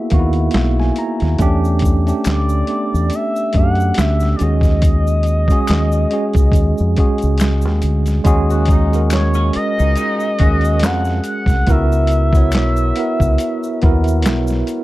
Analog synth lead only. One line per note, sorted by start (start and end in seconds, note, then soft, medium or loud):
0.00 0.93 E5 loud
2.29 3.16 D5 medium
3.15 3.59 E5 loud
3.57 4.01 F#5 loud
3.99 4.35 E5 loud
4.36 4.44 D5 medium
4.42 7.41 D#5 loud
9.13 9.52 C#5 medium
9.56 10.86 D#5 loud
10.85 11.26 F#5 loud
11.27 11.72 F#5 loud
11.71 14.69 E5 loud